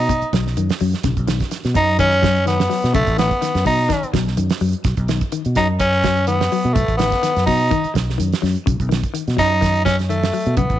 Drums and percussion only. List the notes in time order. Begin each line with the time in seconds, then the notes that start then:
0.09 kick, closed hi-hat
0.22 closed hi-hat
0.33 kick, snare, closed hi-hat
0.47 snare
0.57 closed hi-hat
0.70 snare, closed hi-hat
0.80 open hi-hat
0.93 snare, closed hi-hat
1.03 kick, snare, closed hi-hat
1.17 kick, closed hi-hat
1.27 snare, closed hi-hat
1.40 kick, snare, closed hi-hat
1.51 snare, closed hi-hat
1.64 snare, closed hi-hat
1.75 kick, closed hi-hat
1.99 kick, closed hi-hat
2.12 closed hi-hat
2.23 kick, snare, closed hi-hat
2.36 closed hi-hat
2.47 snare, closed hi-hat
2.60 snare
2.71 snare, open hi-hat
2.83 snare, closed hi-hat
2.94 kick, closed hi-hat
3.07 kick, closed hi-hat
3.18 snare, closed hi-hat
3.31 kick, closed hi-hat
3.42 snare, closed hi-hat
3.55 snare, closed hi-hat
3.66 kick, open hi-hat
3.90 kick, snare, closed hi-hat
4.03 closed hi-hat
4.14 kick, snare, closed hi-hat
4.28 snare
4.37 closed hi-hat
4.50 snare, closed hi-hat
4.60 open hi-hat
4.73 closed hi-hat
4.84 kick, snare, closed hi-hat
4.97 kick, closed hi-hat
5.08 snare, closed hi-hat
5.21 kick, closed hi-hat
5.32 closed hi-hat
5.45 closed hi-hat
5.55 kick, snare, closed hi-hat
5.80 kick, closed hi-hat
5.93 closed hi-hat
6.03 kick, snare, closed hi-hat
6.17 closed hi-hat
6.27 closed hi-hat
6.41 snare
6.52 open hi-hat
6.64 closed hi-hat
6.76 kick, closed hi-hat
6.88 kick, closed hi-hat
6.99 snare, closed hi-hat
7.12 kick, snare, closed hi-hat
7.23 snare, closed hi-hat
7.36 snare, closed hi-hat
7.47 kick, open hi-hat
7.71 kick, closed hi-hat
7.84 closed hi-hat
7.95 kick, snare, closed hi-hat
8.10 snare
8.20 closed hi-hat
8.33 snare, closed hi-hat
8.44 snare, open hi-hat
8.56 closed hi-hat
8.67 kick, closed hi-hat
8.80 kick, closed hi-hat
8.91 snare, closed hi-hat
9.04 kick, closed hi-hat
9.15 closed hi-hat
9.28 snare, closed hi-hat
9.38 kick, snare, closed hi-hat
9.62 kick, snare, closed hi-hat
9.75 closed hi-hat
9.86 kick, snare, closed hi-hat
9.99 snare, closed hi-hat
10.10 closed hi-hat
10.24 snare
10.33 open hi-hat
10.46 closed hi-hat
10.57 kick, closed hi-hat
10.70 kick, closed hi-hat